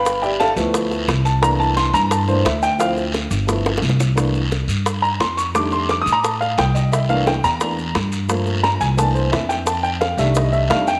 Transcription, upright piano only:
X:1
M:4/4
L:1/8
Q:1/4=175
K:Cmix
V:1 name="Upright piano"
[=Bfg=b] [Gdeg] [Aefa] z4 a | b a c' b a c e g | f z6 z | z4 z b c' _d' |
d' c' (3d' _e' b a f g _e | e f g b3 z2 | z2 b _a =a c e g | a g f e _e =e f g |]
V:2 name="Upright piano"
z3 [F,A,=B,E]3 z2 | [E,A,B,D]4- [E,A,B,D] [E,A,B,D] z2 | [F,CE] z3 [F,A,=B,E] z3 | [E,A,B,D] z6 z |
[_E,G,A,D]3 z4 z | z [E,A,B,D] z2 [E,A,B,D] z3 | [F,A,B,]4 [E,A,B,D]4 | z3 [_E,G,A,D]3 [E,G,A,D] z |]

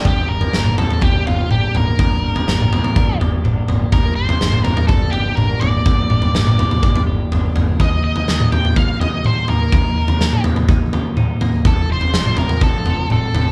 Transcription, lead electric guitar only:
X:1
M:4/4
L:1/8
Q:1/4=124
K:Gm
V:1 name="Lead electric guitar"
G B2 A G F G B- | B4- B z3 | B c2 B A G B d- | d4- d z3 |
e e2 g f e c B- | B3 z4 z | A c2 B A2 A2 |]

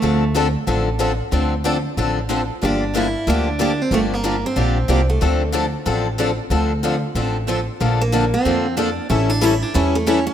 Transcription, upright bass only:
X:1
M:4/4
L:1/8
Q:"Swing" 1/4=185
K:Dm
V:1 name="Upright bass" clef=bass
D,,4 A,,,4 | D,,4 A,,,4 | G,,,4 D,,4 | G,,,4 B,,,2 C,,2 |
D,,4 A,,,4 | D,,4 A,,,4 | B,,,4 F,,4 | A,,,4 E,,4 |]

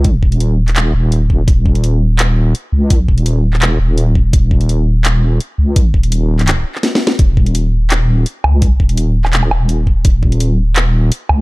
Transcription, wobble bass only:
X:1
M:4/4
L:1/8
Q:1/4=168
K:Db
V:1 name="Wobble bass" clef=bass
D,, E,,,4 E,,,2 E,,, | E,,,6 z D,,- | D,, E,,,4 E,,,3 | E,,,6 z D,,- |
D,, E,,,4 z3 | E,,,6 z D,,- | D,, E,,,4 E,,,3 | E,,,6 z D,, |]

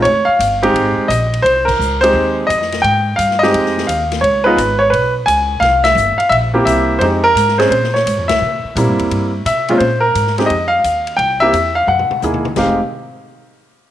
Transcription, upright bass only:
X:1
M:4/4
L:1/8
Q:"Swing" 1/4=172
K:Fm
V:1 name="Upright bass" clef=bass
F,,, z G,,,2 A,,, z B,,,2 | C,,2 D,,2 E,,2 F,,2 | A,,2 G,,2 F,,2 E,,2 | D,,2 A,,,2 _C,,2 D,,2 |
C,,2 G,,, z B,,,2 C,,2 | F,,2 A,,2 B,,2 (3A,, F,, D,, | C, z (3B,, G,, =E,, G,,2 C,2 | B,,2 A,,2 F,,2 E,,2 |
C,,2 =E,,2 _G,, z _E,,2 | F,,, z6 z |]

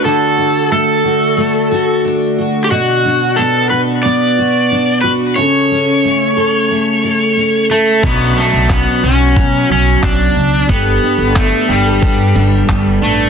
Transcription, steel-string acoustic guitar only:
X:1
M:4/4
L:1/16
Q:1/4=90
K:Bm
V:1 name="Steel-string acoustic guitar"
[D,A,DF]2 D2 A,2 F2 A,2 F2 D2 F2 | [B,,F]2 D2 B,2 F2 B,2 F2 D2 F2 | [C,A]2 C2 A,2 A2 A,2 A2 C2 A2 | [B,,F]4 C2 F2 F,6 D2 |
[G,A]2 D2 B,2 G A B,2 D2 B,2 D2 |]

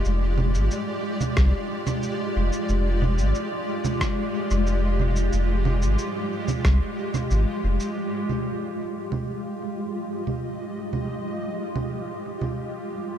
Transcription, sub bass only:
X:1
M:4/4
L:1/16
Q:1/4=91
K:Fdor
V:1 name="Sub bass" clef=bass
F,,,3 A,,, z4 C,, z4 z F,,, z | F,,,3 A,,, z6 z F,,,4- F,,, | F,,,3 A,,, z4 C,, z3 A,,, z F,,, z | z16 |
z16 |]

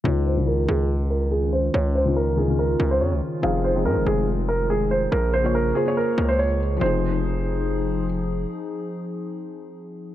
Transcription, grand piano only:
X:1
M:4/4
L:1/16
Q:1/4=142
K:Fm
V:1 name="Grand piano"
d2 c2 B2 A2 z2 B2 A2 c2 | d2 c2 B2 A2 B3 c d2 z2 | f2 c2 B2 A2 z2 B2 A2 c2 | B2 c2 B2 A2 B3 c d2 z2 |
c12 z4 | z16 |]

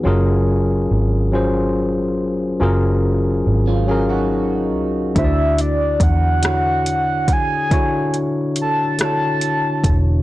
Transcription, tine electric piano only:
X:1
M:6/8
L:1/8
Q:3/8=47
K:F#dor
V:1 name="Tine electric piano"
[F,C^EG^A]3 [F,CEG=c]3 | [F,C^EG^A]3 [F,CGA^e]3 | [=D,=DEF=c=d]3 [D,DEF^c]3 | [=D,=DEFc]3 [D,DEFc]3 |]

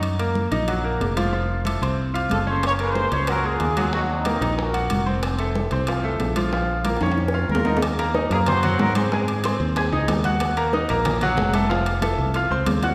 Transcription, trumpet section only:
X:1
M:4/4
L:1/8
Q:1/4=185
K:Ebdor
V:1 name="Trumpet section"
z8 | z6 [F=A] [Ac] | [Bd] [Ac]3 [GB] [FA]2 [FA] | [EG] [CE]3 [GB]3 z |
z8 | z6 [FB]2 | z3 [FA] [Gc]2 [GB] [EA]- | [EA]3 z4 z |
z8 | z8 |]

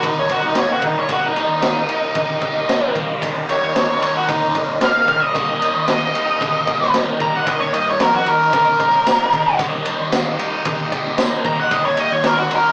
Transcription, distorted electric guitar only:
X:1
M:4/4
L:1/8
Q:1/4=113
K:Eb
V:1 name="Distorted electric guitar" clef=bass
[E,,E,G,B,E] G, B, G, E, G, B, E | E,, G, B, G, E, G, B, E | E,, G, B, G, E, G, B, E | E,, G, B, G, E, G, B, E |
E,, G, B, G, E, G, B, E | E,, G, B, G, E, G, B, E |]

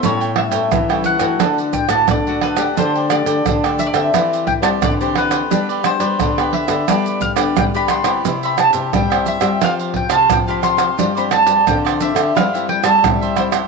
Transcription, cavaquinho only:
X:1
M:4/4
L:1/16
Q:1/4=88
K:C
V:1 name="Cavaquinho"
[EA^cg] [Acg] z [Acg] [EAcg] [Acg]2 [Acg] [DAd^f] [Adf] z [Adf]2 [Adf] [DAdf] [Adf] | [DAdg] [Adg] z [Adg] [DAdg] [Adg]2 [Adg] [EGcd] [Gcd] z [Gcd]2 [Gcd] [EGcd] [Gcd] | [DGBd] [GBd] z [GBd] [DGBd] [GBd]2 [GBd] [DGBd] [GBd] z [GBd]2 [GBd] [DGBd] [GBd] | [EGce] [Gce] z [Gce] [EGce] [Gce]2 [Gce] [FGcf] [Gcf] z [Gcf]2 [Gcf] [FGcf] [Gcf] |
[FGcd] [Gcd] z [Gcd] [FGcd] [Gcd]2 [Gcd] [EGce] [Gce] z [Gce]2 [Gce] [EGce] [Gce] |]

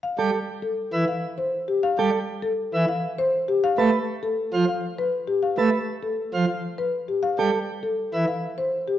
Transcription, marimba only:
X:1
M:3/4
L:1/16
Q:1/4=100
K:Flyd
V:1 name="Marimba"
f z3 A z2 f z c z G | f z3 A z2 f z c z G | f z3 A z2 f z B z G | f z3 A z2 f z B z G |
f z3 A z2 f z c z G |]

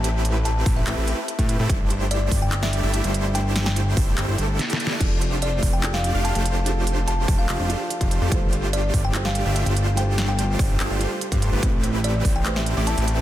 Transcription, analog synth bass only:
X:1
M:4/4
L:1/16
Q:1/4=145
K:Flyd
V:1 name="Analog synth bass" clef=bass
A,,,6 A,,,2 A,,, A,,,2 z2 A,,2 A,, | G,,,6 G,,,4- G,,, G,,,2 G,,,3- | G,,,6 G,,,2 G,,, G,,, G,,,2 z4 | F,,,6 F,,,4- F,,, F,,,2 F,,,3- |
F,,,6 F,,,2 F,,, F,,,2 z2 F,,,2 F,, | G,,,6 G,,,4- G,,, G,,,2 G,,,3- | G,,,6 G,,,2 G,,, G,,,2 z2 G,,2 G,,, | A,,,6 A,,,4- A,,, A,,,2 A,,,3 |]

